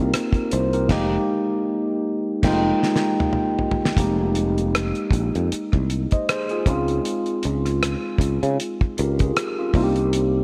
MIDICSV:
0, 0, Header, 1, 5, 480
1, 0, Start_track
1, 0, Key_signature, -4, "minor"
1, 0, Tempo, 769231
1, 556, Time_signature, 4, 2, 24, 8
1, 6514, End_track
2, 0, Start_track
2, 0, Title_t, "Tine electric piano"
2, 0, Program_c, 0, 4
2, 0, Control_c, 0, 64, 127
2, 0, Note_on_c, 0, 58, 67
2, 0, Note_on_c, 0, 60, 63
2, 0, Note_on_c, 0, 63, 58
2, 0, Note_on_c, 0, 65, 87
2, 0, Note_on_c, 0, 70, 75
2, 85, Note_off_c, 0, 70, 0
2, 219, Note_on_c, 0, 70, 53
2, 221, Note_on_c, 0, 67, 47
2, 316, Note_off_c, 0, 70, 0
2, 317, Note_off_c, 0, 67, 0
2, 327, Note_on_c, 0, 72, 67
2, 448, Note_off_c, 0, 72, 0
2, 458, Note_on_c, 0, 70, 64
2, 463, Note_on_c, 0, 67, 57
2, 517, Note_off_c, 0, 58, 0
2, 521, Note_off_c, 0, 60, 0
2, 523, Note_off_c, 0, 63, 0
2, 555, Note_off_c, 0, 70, 0
2, 555, Note_on_c, 0, 56, 84
2, 558, Note_off_c, 0, 67, 0
2, 563, Note_on_c, 0, 58, 92
2, 565, Control_c, 0, 64, 0
2, 567, Note_off_c, 0, 65, 0
2, 568, Note_on_c, 0, 63, 91
2, 573, Note_on_c, 0, 67, 86
2, 674, Control_c, 0, 64, 127
2, 723, Note_off_c, 0, 56, 0
2, 728, Note_off_c, 0, 58, 0
2, 731, Note_off_c, 0, 63, 0
2, 733, Note_off_c, 0, 67, 0
2, 1517, Note_on_c, 0, 56, 93
2, 1523, Note_on_c, 0, 58, 90
2, 1528, Note_on_c, 0, 79, 95
2, 1530, Note_on_c, 0, 63, 94
2, 1536, Note_on_c, 0, 65, 88
2, 1684, Note_off_c, 0, 56, 0
2, 1688, Note_off_c, 0, 58, 0
2, 1690, Note_off_c, 0, 79, 0
2, 1692, Note_off_c, 0, 63, 0
2, 1695, Note_off_c, 0, 65, 0
2, 2476, Note_on_c, 0, 56, 71
2, 2483, Control_c, 0, 64, 0
2, 2483, Note_on_c, 0, 58, 68
2, 2488, Note_on_c, 0, 63, 70
2, 2493, Note_on_c, 0, 67, 84
2, 2577, Control_c, 0, 64, 127
2, 3383, Note_off_c, 0, 56, 0
2, 3386, Note_off_c, 0, 58, 0
2, 3389, Note_off_c, 0, 63, 0
2, 3391, Note_off_c, 0, 67, 0
2, 3820, Note_on_c, 0, 75, 54
2, 3824, Note_on_c, 0, 72, 46
2, 3916, Note_off_c, 0, 75, 0
2, 3918, Note_off_c, 0, 72, 0
2, 3928, Note_on_c, 0, 72, 69
2, 3933, Note_on_c, 0, 68, 56
2, 4049, Note_off_c, 0, 72, 0
2, 4051, Note_off_c, 0, 68, 0
2, 4060, Note_on_c, 0, 68, 64
2, 4065, Note_on_c, 0, 65, 55
2, 4160, Note_on_c, 0, 56, 81
2, 4163, Control_c, 0, 64, 0
2, 4167, Note_on_c, 0, 60, 78
2, 4170, Note_off_c, 0, 65, 0
2, 4171, Note_on_c, 0, 63, 73
2, 4177, Note_on_c, 0, 65, 91
2, 4268, Control_c, 0, 64, 127
2, 4283, Note_off_c, 0, 68, 0
2, 5065, Note_off_c, 0, 56, 0
2, 5068, Note_off_c, 0, 60, 0
2, 5070, Note_off_c, 0, 63, 0
2, 5074, Note_off_c, 0, 65, 0
2, 5608, Note_on_c, 0, 70, 56
2, 5612, Note_on_c, 0, 67, 50
2, 5729, Note_off_c, 0, 70, 0
2, 5731, Note_off_c, 0, 67, 0
2, 5742, Note_on_c, 0, 68, 57
2, 5747, Note_on_c, 0, 65, 52
2, 5964, Note_off_c, 0, 68, 0
2, 5966, Note_off_c, 0, 65, 0
2, 5983, Note_on_c, 0, 65, 61
2, 5987, Note_on_c, 0, 61, 51
2, 6078, Note_on_c, 0, 58, 90
2, 6084, Control_c, 0, 64, 0
2, 6086, Note_on_c, 0, 60, 69
2, 6089, Note_off_c, 0, 65, 0
2, 6091, Note_on_c, 0, 63, 80
2, 6097, Note_on_c, 0, 65, 69
2, 6131, Note_off_c, 0, 65, 0
2, 6136, Note_on_c, 0, 67, 87
2, 6177, Control_c, 0, 64, 127
2, 6207, Note_off_c, 0, 61, 0
2, 6514, Note_off_c, 0, 58, 0
2, 6514, Note_off_c, 0, 60, 0
2, 6514, Note_off_c, 0, 63, 0
2, 6514, Note_off_c, 0, 67, 0
2, 6514, End_track
3, 0, Start_track
3, 0, Title_t, "Fretless electric bass"
3, 0, Program_c, 1, 35
3, 0, Note_on_c, 1, 36, 83
3, 70, Note_off_c, 1, 36, 0
3, 330, Note_on_c, 1, 36, 91
3, 561, Note_off_c, 1, 36, 0
3, 565, Note_on_c, 1, 29, 97
3, 729, Note_off_c, 1, 29, 0
3, 1524, Note_on_c, 1, 29, 94
3, 1688, Note_off_c, 1, 29, 0
3, 2482, Note_on_c, 1, 29, 106
3, 3067, Note_off_c, 1, 29, 0
3, 3194, Note_on_c, 1, 34, 88
3, 3306, Note_off_c, 1, 34, 0
3, 3342, Note_on_c, 1, 41, 89
3, 3426, Note_off_c, 1, 41, 0
3, 3584, Note_on_c, 1, 36, 73
3, 3779, Note_off_c, 1, 36, 0
3, 4163, Note_on_c, 1, 37, 97
3, 4361, Note_off_c, 1, 37, 0
3, 4650, Note_on_c, 1, 37, 82
3, 4957, Note_off_c, 1, 37, 0
3, 5114, Note_on_c, 1, 37, 82
3, 5227, Note_off_c, 1, 37, 0
3, 5260, Note_on_c, 1, 49, 93
3, 5345, Note_off_c, 1, 49, 0
3, 5611, Note_on_c, 1, 37, 93
3, 5806, Note_off_c, 1, 37, 0
3, 6083, Note_on_c, 1, 36, 97
3, 6514, Note_off_c, 1, 36, 0
3, 6514, End_track
4, 0, Start_track
4, 0, Title_t, "Muted fretless electric bass strokes"
4, 3449, Note_on_c, 9, 29, 42
4, 3511, Note_off_c, 9, 29, 0
4, 5505, Note_on_c, 9, 29, 43
4, 5567, Note_off_c, 9, 29, 0
4, 6514, End_track
5, 0, Start_track
5, 0, Title_t, "Drums"
5, 85, Note_on_c, 9, 42, 86
5, 86, Note_on_c, 9, 37, 98
5, 147, Note_off_c, 9, 42, 0
5, 149, Note_off_c, 9, 37, 0
5, 203, Note_on_c, 9, 36, 89
5, 212, Note_on_c, 9, 42, 32
5, 265, Note_off_c, 9, 36, 0
5, 274, Note_off_c, 9, 42, 0
5, 321, Note_on_c, 9, 42, 60
5, 383, Note_off_c, 9, 42, 0
5, 457, Note_on_c, 9, 42, 37
5, 519, Note_off_c, 9, 42, 0
5, 557, Note_on_c, 9, 36, 100
5, 557, Note_on_c, 9, 49, 74
5, 565, Note_on_c, 9, 38, 103
5, 619, Note_off_c, 9, 36, 0
5, 620, Note_off_c, 9, 49, 0
5, 627, Note_off_c, 9, 38, 0
5, 1517, Note_on_c, 9, 36, 109
5, 1517, Note_on_c, 9, 49, 86
5, 1525, Note_on_c, 9, 38, 101
5, 1579, Note_off_c, 9, 36, 0
5, 1580, Note_off_c, 9, 49, 0
5, 1587, Note_off_c, 9, 38, 0
5, 1766, Note_on_c, 9, 38, 57
5, 1828, Note_off_c, 9, 38, 0
5, 1845, Note_on_c, 9, 38, 73
5, 1908, Note_off_c, 9, 38, 0
5, 1997, Note_on_c, 9, 45, 78
5, 2060, Note_off_c, 9, 45, 0
5, 2076, Note_on_c, 9, 45, 67
5, 2139, Note_off_c, 9, 45, 0
5, 2238, Note_on_c, 9, 43, 72
5, 2300, Note_off_c, 9, 43, 0
5, 2317, Note_on_c, 9, 43, 91
5, 2380, Note_off_c, 9, 43, 0
5, 2405, Note_on_c, 9, 38, 75
5, 2467, Note_off_c, 9, 38, 0
5, 2475, Note_on_c, 9, 36, 100
5, 2482, Note_on_c, 9, 42, 78
5, 2538, Note_off_c, 9, 36, 0
5, 2544, Note_off_c, 9, 42, 0
5, 2715, Note_on_c, 9, 42, 73
5, 2778, Note_off_c, 9, 42, 0
5, 2857, Note_on_c, 9, 42, 48
5, 2920, Note_off_c, 9, 42, 0
5, 2964, Note_on_c, 9, 37, 98
5, 2964, Note_on_c, 9, 42, 82
5, 3026, Note_off_c, 9, 37, 0
5, 3026, Note_off_c, 9, 42, 0
5, 3090, Note_on_c, 9, 42, 33
5, 3152, Note_off_c, 9, 42, 0
5, 3186, Note_on_c, 9, 36, 88
5, 3202, Note_on_c, 9, 42, 63
5, 3249, Note_off_c, 9, 36, 0
5, 3265, Note_off_c, 9, 42, 0
5, 3340, Note_on_c, 9, 42, 45
5, 3402, Note_off_c, 9, 42, 0
5, 3445, Note_on_c, 9, 42, 84
5, 3507, Note_off_c, 9, 42, 0
5, 3570, Note_on_c, 9, 37, 31
5, 3576, Note_on_c, 9, 36, 92
5, 3633, Note_off_c, 9, 37, 0
5, 3639, Note_off_c, 9, 36, 0
5, 3681, Note_on_c, 9, 42, 71
5, 3743, Note_off_c, 9, 42, 0
5, 3813, Note_on_c, 9, 42, 44
5, 3821, Note_on_c, 9, 36, 80
5, 3875, Note_off_c, 9, 42, 0
5, 3883, Note_off_c, 9, 36, 0
5, 3924, Note_on_c, 9, 42, 82
5, 3926, Note_on_c, 9, 37, 112
5, 3987, Note_off_c, 9, 42, 0
5, 3988, Note_off_c, 9, 37, 0
5, 4051, Note_on_c, 9, 42, 33
5, 4114, Note_off_c, 9, 42, 0
5, 4156, Note_on_c, 9, 36, 104
5, 4158, Note_on_c, 9, 42, 65
5, 4218, Note_off_c, 9, 36, 0
5, 4220, Note_off_c, 9, 42, 0
5, 4294, Note_on_c, 9, 42, 43
5, 4356, Note_off_c, 9, 42, 0
5, 4400, Note_on_c, 9, 42, 77
5, 4463, Note_off_c, 9, 42, 0
5, 4529, Note_on_c, 9, 42, 33
5, 4592, Note_off_c, 9, 42, 0
5, 4635, Note_on_c, 9, 42, 72
5, 4698, Note_off_c, 9, 42, 0
5, 4777, Note_on_c, 9, 37, 33
5, 4779, Note_on_c, 9, 42, 49
5, 4839, Note_off_c, 9, 37, 0
5, 4842, Note_off_c, 9, 42, 0
5, 4884, Note_on_c, 9, 37, 93
5, 4884, Note_on_c, 9, 42, 77
5, 4946, Note_off_c, 9, 37, 0
5, 4946, Note_off_c, 9, 42, 0
5, 5107, Note_on_c, 9, 36, 89
5, 5123, Note_on_c, 9, 42, 68
5, 5169, Note_off_c, 9, 36, 0
5, 5186, Note_off_c, 9, 42, 0
5, 5260, Note_on_c, 9, 42, 47
5, 5322, Note_off_c, 9, 42, 0
5, 5365, Note_on_c, 9, 42, 83
5, 5427, Note_off_c, 9, 42, 0
5, 5497, Note_on_c, 9, 36, 82
5, 5560, Note_off_c, 9, 36, 0
5, 5603, Note_on_c, 9, 42, 68
5, 5665, Note_off_c, 9, 42, 0
5, 5736, Note_on_c, 9, 42, 48
5, 5742, Note_on_c, 9, 36, 89
5, 5798, Note_off_c, 9, 42, 0
5, 5804, Note_off_c, 9, 36, 0
5, 5844, Note_on_c, 9, 42, 84
5, 5846, Note_on_c, 9, 37, 108
5, 5907, Note_off_c, 9, 42, 0
5, 5908, Note_off_c, 9, 37, 0
5, 6076, Note_on_c, 9, 36, 94
5, 6079, Note_on_c, 9, 46, 43
5, 6139, Note_off_c, 9, 36, 0
5, 6141, Note_off_c, 9, 46, 0
5, 6213, Note_on_c, 9, 42, 43
5, 6276, Note_off_c, 9, 42, 0
5, 6321, Note_on_c, 9, 42, 81
5, 6384, Note_off_c, 9, 42, 0
5, 6514, End_track
0, 0, End_of_file